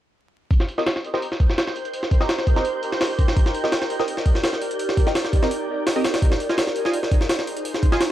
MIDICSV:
0, 0, Header, 1, 5, 480
1, 0, Start_track
1, 0, Key_signature, -3, "minor"
1, 0, Tempo, 357143
1, 681, Time_signature, 4, 2, 24, 8
1, 10909, End_track
2, 0, Start_track
2, 0, Title_t, "Synth texture"
2, 0, Program_c, 0, 99
2, 684, Note_on_c, 0, 91, 85
2, 10909, Note_off_c, 0, 91, 0
2, 10909, End_track
3, 0, Start_track
3, 0, Title_t, "Synth stab"
3, 0, Program_c, 1, 62
3, 1047, Note_on_c, 1, 60, 71
3, 1047, Note_on_c, 1, 75, 77
3, 1048, Note_on_c, 1, 67, 65
3, 1048, Note_on_c, 1, 70, 64
3, 1153, Note_off_c, 1, 60, 0
3, 1153, Note_off_c, 1, 67, 0
3, 1153, Note_off_c, 1, 70, 0
3, 1153, Note_off_c, 1, 75, 0
3, 1527, Note_on_c, 1, 67, 74
3, 1527, Note_on_c, 1, 70, 75
3, 1527, Note_on_c, 1, 75, 87
3, 1528, Note_on_c, 1, 60, 83
3, 1703, Note_off_c, 1, 60, 0
3, 1703, Note_off_c, 1, 67, 0
3, 1703, Note_off_c, 1, 70, 0
3, 1703, Note_off_c, 1, 75, 0
3, 2964, Note_on_c, 1, 60, 80
3, 2964, Note_on_c, 1, 67, 73
3, 2964, Note_on_c, 1, 70, 73
3, 2964, Note_on_c, 1, 75, 86
3, 3072, Note_off_c, 1, 60, 0
3, 3072, Note_off_c, 1, 67, 0
3, 3072, Note_off_c, 1, 70, 0
3, 3072, Note_off_c, 1, 75, 0
3, 3445, Note_on_c, 1, 70, 75
3, 3446, Note_on_c, 1, 60, 82
3, 3446, Note_on_c, 1, 67, 72
3, 3446, Note_on_c, 1, 75, 86
3, 3552, Note_off_c, 1, 60, 0
3, 3552, Note_off_c, 1, 67, 0
3, 3552, Note_off_c, 1, 70, 0
3, 3552, Note_off_c, 1, 75, 0
3, 4887, Note_on_c, 1, 60, 72
3, 4887, Note_on_c, 1, 67, 67
3, 4887, Note_on_c, 1, 70, 66
3, 4887, Note_on_c, 1, 75, 81
3, 4993, Note_off_c, 1, 60, 0
3, 4993, Note_off_c, 1, 67, 0
3, 4993, Note_off_c, 1, 70, 0
3, 4993, Note_off_c, 1, 75, 0
3, 5367, Note_on_c, 1, 70, 75
3, 5367, Note_on_c, 1, 75, 94
3, 5368, Note_on_c, 1, 60, 80
3, 5368, Note_on_c, 1, 67, 77
3, 5543, Note_off_c, 1, 60, 0
3, 5543, Note_off_c, 1, 67, 0
3, 5543, Note_off_c, 1, 70, 0
3, 5543, Note_off_c, 1, 75, 0
3, 6808, Note_on_c, 1, 60, 80
3, 6808, Note_on_c, 1, 67, 72
3, 6808, Note_on_c, 1, 70, 72
3, 6808, Note_on_c, 1, 75, 88
3, 6913, Note_off_c, 1, 67, 0
3, 6913, Note_off_c, 1, 70, 0
3, 6913, Note_off_c, 1, 75, 0
3, 6914, Note_off_c, 1, 60, 0
3, 7290, Note_on_c, 1, 67, 71
3, 7290, Note_on_c, 1, 70, 71
3, 7290, Note_on_c, 1, 75, 89
3, 7291, Note_on_c, 1, 60, 81
3, 7394, Note_off_c, 1, 67, 0
3, 7394, Note_off_c, 1, 70, 0
3, 7394, Note_off_c, 1, 75, 0
3, 7395, Note_off_c, 1, 60, 0
3, 8009, Note_on_c, 1, 60, 89
3, 8009, Note_on_c, 1, 67, 82
3, 8009, Note_on_c, 1, 70, 83
3, 8009, Note_on_c, 1, 75, 101
3, 8114, Note_off_c, 1, 60, 0
3, 8114, Note_off_c, 1, 67, 0
3, 8114, Note_off_c, 1, 70, 0
3, 8114, Note_off_c, 1, 75, 0
3, 8730, Note_on_c, 1, 65, 72
3, 8730, Note_on_c, 1, 72, 67
3, 8730, Note_on_c, 1, 75, 67
3, 8730, Note_on_c, 1, 80, 80
3, 8834, Note_off_c, 1, 65, 0
3, 8834, Note_off_c, 1, 72, 0
3, 8834, Note_off_c, 1, 75, 0
3, 8834, Note_off_c, 1, 80, 0
3, 9209, Note_on_c, 1, 65, 81
3, 9209, Note_on_c, 1, 80, 90
3, 9210, Note_on_c, 1, 72, 75
3, 9210, Note_on_c, 1, 75, 75
3, 9384, Note_off_c, 1, 65, 0
3, 9384, Note_off_c, 1, 72, 0
3, 9384, Note_off_c, 1, 75, 0
3, 9384, Note_off_c, 1, 80, 0
3, 10647, Note_on_c, 1, 65, 79
3, 10647, Note_on_c, 1, 72, 75
3, 10647, Note_on_c, 1, 75, 74
3, 10647, Note_on_c, 1, 80, 88
3, 10753, Note_off_c, 1, 65, 0
3, 10753, Note_off_c, 1, 72, 0
3, 10753, Note_off_c, 1, 75, 0
3, 10753, Note_off_c, 1, 80, 0
3, 10909, End_track
4, 0, Start_track
4, 0, Title_t, "Ambient pad"
4, 0, Program_c, 2, 92
4, 682, Note_on_c, 2, 67, 70
4, 682, Note_on_c, 2, 70, 71
4, 683, Note_on_c, 2, 72, 85
4, 684, Note_on_c, 2, 63, 77
4, 4484, Note_off_c, 2, 72, 0
4, 4523, Note_on_c, 2, 74, 87
4, 8308, Note_off_c, 2, 67, 0
4, 8308, Note_off_c, 2, 70, 0
4, 8324, Note_off_c, 2, 74, 0
4, 8363, Note_on_c, 2, 65, 72
4, 8364, Note_on_c, 2, 72, 86
4, 8365, Note_on_c, 2, 68, 72
4, 10909, Note_off_c, 2, 63, 0
4, 10909, Note_off_c, 2, 65, 0
4, 10909, Note_off_c, 2, 68, 0
4, 10909, Note_off_c, 2, 72, 0
4, 10909, End_track
5, 0, Start_track
5, 0, Title_t, "Drums"
5, 681, Note_on_c, 9, 46, 76
5, 682, Note_on_c, 9, 36, 99
5, 808, Note_on_c, 9, 38, 46
5, 816, Note_off_c, 9, 36, 0
5, 816, Note_off_c, 9, 46, 0
5, 921, Note_on_c, 9, 46, 60
5, 942, Note_off_c, 9, 38, 0
5, 1049, Note_on_c, 9, 38, 42
5, 1055, Note_off_c, 9, 46, 0
5, 1163, Note_off_c, 9, 38, 0
5, 1163, Note_on_c, 9, 38, 106
5, 1163, Note_on_c, 9, 46, 78
5, 1290, Note_off_c, 9, 38, 0
5, 1290, Note_on_c, 9, 38, 45
5, 1297, Note_off_c, 9, 46, 0
5, 1404, Note_on_c, 9, 46, 61
5, 1424, Note_off_c, 9, 38, 0
5, 1530, Note_on_c, 9, 38, 37
5, 1538, Note_off_c, 9, 46, 0
5, 1643, Note_on_c, 9, 46, 80
5, 1664, Note_off_c, 9, 38, 0
5, 1770, Note_on_c, 9, 38, 39
5, 1777, Note_off_c, 9, 46, 0
5, 1881, Note_on_c, 9, 36, 81
5, 1882, Note_on_c, 9, 46, 62
5, 1904, Note_off_c, 9, 38, 0
5, 2010, Note_on_c, 9, 38, 41
5, 2016, Note_off_c, 9, 36, 0
5, 2016, Note_off_c, 9, 46, 0
5, 2122, Note_off_c, 9, 38, 0
5, 2122, Note_on_c, 9, 38, 105
5, 2122, Note_on_c, 9, 46, 77
5, 2248, Note_off_c, 9, 38, 0
5, 2248, Note_on_c, 9, 38, 44
5, 2256, Note_off_c, 9, 46, 0
5, 2361, Note_on_c, 9, 46, 61
5, 2382, Note_off_c, 9, 38, 0
5, 2487, Note_on_c, 9, 42, 40
5, 2496, Note_off_c, 9, 46, 0
5, 2600, Note_on_c, 9, 46, 79
5, 2622, Note_off_c, 9, 42, 0
5, 2725, Note_on_c, 9, 38, 44
5, 2735, Note_off_c, 9, 46, 0
5, 2840, Note_on_c, 9, 36, 87
5, 2840, Note_on_c, 9, 46, 62
5, 2860, Note_off_c, 9, 38, 0
5, 2966, Note_on_c, 9, 38, 43
5, 2974, Note_off_c, 9, 46, 0
5, 2975, Note_off_c, 9, 36, 0
5, 3079, Note_off_c, 9, 38, 0
5, 3079, Note_on_c, 9, 38, 109
5, 3079, Note_on_c, 9, 46, 81
5, 3205, Note_off_c, 9, 38, 0
5, 3205, Note_on_c, 9, 38, 46
5, 3213, Note_off_c, 9, 46, 0
5, 3319, Note_on_c, 9, 46, 63
5, 3320, Note_on_c, 9, 36, 84
5, 3340, Note_off_c, 9, 38, 0
5, 3446, Note_on_c, 9, 38, 44
5, 3453, Note_off_c, 9, 46, 0
5, 3454, Note_off_c, 9, 36, 0
5, 3559, Note_on_c, 9, 46, 80
5, 3581, Note_off_c, 9, 38, 0
5, 3694, Note_off_c, 9, 46, 0
5, 3800, Note_on_c, 9, 46, 59
5, 3929, Note_on_c, 9, 38, 43
5, 3935, Note_off_c, 9, 46, 0
5, 4042, Note_off_c, 9, 38, 0
5, 4042, Note_on_c, 9, 38, 105
5, 4042, Note_on_c, 9, 46, 75
5, 4176, Note_off_c, 9, 38, 0
5, 4176, Note_off_c, 9, 46, 0
5, 4282, Note_on_c, 9, 36, 88
5, 4283, Note_on_c, 9, 46, 63
5, 4410, Note_on_c, 9, 38, 52
5, 4416, Note_off_c, 9, 36, 0
5, 4417, Note_off_c, 9, 46, 0
5, 4522, Note_on_c, 9, 36, 102
5, 4522, Note_on_c, 9, 46, 80
5, 4544, Note_off_c, 9, 38, 0
5, 4649, Note_on_c, 9, 38, 47
5, 4656, Note_off_c, 9, 46, 0
5, 4657, Note_off_c, 9, 36, 0
5, 4763, Note_on_c, 9, 46, 61
5, 4783, Note_off_c, 9, 38, 0
5, 4890, Note_on_c, 9, 38, 42
5, 4897, Note_off_c, 9, 46, 0
5, 5001, Note_off_c, 9, 38, 0
5, 5001, Note_on_c, 9, 38, 107
5, 5001, Note_on_c, 9, 46, 81
5, 5128, Note_off_c, 9, 38, 0
5, 5128, Note_on_c, 9, 38, 47
5, 5136, Note_off_c, 9, 46, 0
5, 5243, Note_on_c, 9, 46, 60
5, 5263, Note_off_c, 9, 38, 0
5, 5369, Note_on_c, 9, 38, 38
5, 5377, Note_off_c, 9, 46, 0
5, 5482, Note_on_c, 9, 46, 81
5, 5504, Note_off_c, 9, 38, 0
5, 5609, Note_on_c, 9, 38, 39
5, 5616, Note_off_c, 9, 46, 0
5, 5721, Note_on_c, 9, 46, 62
5, 5723, Note_on_c, 9, 36, 84
5, 5743, Note_off_c, 9, 38, 0
5, 5849, Note_on_c, 9, 38, 42
5, 5855, Note_off_c, 9, 46, 0
5, 5857, Note_off_c, 9, 36, 0
5, 5962, Note_off_c, 9, 38, 0
5, 5962, Note_on_c, 9, 38, 106
5, 5962, Note_on_c, 9, 46, 79
5, 6088, Note_off_c, 9, 38, 0
5, 6088, Note_on_c, 9, 38, 45
5, 6096, Note_off_c, 9, 46, 0
5, 6203, Note_on_c, 9, 46, 65
5, 6223, Note_off_c, 9, 38, 0
5, 6329, Note_on_c, 9, 42, 39
5, 6337, Note_off_c, 9, 46, 0
5, 6442, Note_on_c, 9, 46, 78
5, 6463, Note_off_c, 9, 42, 0
5, 6570, Note_on_c, 9, 38, 44
5, 6577, Note_off_c, 9, 46, 0
5, 6682, Note_on_c, 9, 36, 85
5, 6682, Note_on_c, 9, 46, 61
5, 6704, Note_off_c, 9, 38, 0
5, 6810, Note_on_c, 9, 38, 45
5, 6817, Note_off_c, 9, 36, 0
5, 6817, Note_off_c, 9, 46, 0
5, 6923, Note_off_c, 9, 38, 0
5, 6923, Note_on_c, 9, 38, 107
5, 6923, Note_on_c, 9, 46, 84
5, 7048, Note_off_c, 9, 38, 0
5, 7048, Note_on_c, 9, 38, 49
5, 7057, Note_off_c, 9, 46, 0
5, 7163, Note_on_c, 9, 36, 86
5, 7164, Note_on_c, 9, 46, 62
5, 7183, Note_off_c, 9, 38, 0
5, 7292, Note_on_c, 9, 38, 46
5, 7297, Note_off_c, 9, 36, 0
5, 7298, Note_off_c, 9, 46, 0
5, 7405, Note_on_c, 9, 46, 83
5, 7426, Note_off_c, 9, 38, 0
5, 7539, Note_off_c, 9, 46, 0
5, 7885, Note_on_c, 9, 38, 105
5, 7885, Note_on_c, 9, 46, 72
5, 8020, Note_off_c, 9, 38, 0
5, 8020, Note_off_c, 9, 46, 0
5, 8125, Note_on_c, 9, 38, 98
5, 8125, Note_on_c, 9, 46, 72
5, 8251, Note_off_c, 9, 38, 0
5, 8251, Note_off_c, 9, 46, 0
5, 8251, Note_on_c, 9, 38, 93
5, 8251, Note_on_c, 9, 46, 73
5, 8363, Note_on_c, 9, 36, 99
5, 8365, Note_off_c, 9, 46, 0
5, 8365, Note_on_c, 9, 46, 81
5, 8385, Note_off_c, 9, 38, 0
5, 8489, Note_on_c, 9, 38, 49
5, 8497, Note_off_c, 9, 36, 0
5, 8499, Note_off_c, 9, 46, 0
5, 8604, Note_on_c, 9, 46, 61
5, 8624, Note_off_c, 9, 38, 0
5, 8729, Note_on_c, 9, 38, 44
5, 8738, Note_off_c, 9, 46, 0
5, 8841, Note_off_c, 9, 38, 0
5, 8841, Note_on_c, 9, 38, 109
5, 8841, Note_on_c, 9, 46, 82
5, 8967, Note_off_c, 9, 38, 0
5, 8967, Note_on_c, 9, 38, 47
5, 8976, Note_off_c, 9, 46, 0
5, 9080, Note_on_c, 9, 46, 62
5, 9101, Note_off_c, 9, 38, 0
5, 9207, Note_on_c, 9, 38, 39
5, 9215, Note_off_c, 9, 46, 0
5, 9320, Note_on_c, 9, 46, 80
5, 9342, Note_off_c, 9, 38, 0
5, 9448, Note_on_c, 9, 38, 40
5, 9454, Note_off_c, 9, 46, 0
5, 9562, Note_on_c, 9, 36, 85
5, 9562, Note_on_c, 9, 46, 62
5, 9583, Note_off_c, 9, 38, 0
5, 9688, Note_on_c, 9, 38, 42
5, 9696, Note_off_c, 9, 36, 0
5, 9696, Note_off_c, 9, 46, 0
5, 9802, Note_off_c, 9, 38, 0
5, 9802, Note_on_c, 9, 38, 107
5, 9802, Note_on_c, 9, 46, 82
5, 9929, Note_off_c, 9, 38, 0
5, 9929, Note_on_c, 9, 38, 44
5, 9937, Note_off_c, 9, 46, 0
5, 10044, Note_on_c, 9, 46, 64
5, 10063, Note_off_c, 9, 38, 0
5, 10169, Note_on_c, 9, 42, 39
5, 10178, Note_off_c, 9, 46, 0
5, 10283, Note_on_c, 9, 46, 80
5, 10303, Note_off_c, 9, 42, 0
5, 10409, Note_on_c, 9, 38, 46
5, 10417, Note_off_c, 9, 46, 0
5, 10520, Note_on_c, 9, 46, 63
5, 10521, Note_on_c, 9, 36, 87
5, 10543, Note_off_c, 9, 38, 0
5, 10648, Note_on_c, 9, 38, 44
5, 10655, Note_off_c, 9, 46, 0
5, 10656, Note_off_c, 9, 36, 0
5, 10760, Note_off_c, 9, 38, 0
5, 10760, Note_on_c, 9, 38, 110
5, 10760, Note_on_c, 9, 46, 83
5, 10895, Note_off_c, 9, 38, 0
5, 10895, Note_off_c, 9, 46, 0
5, 10909, End_track
0, 0, End_of_file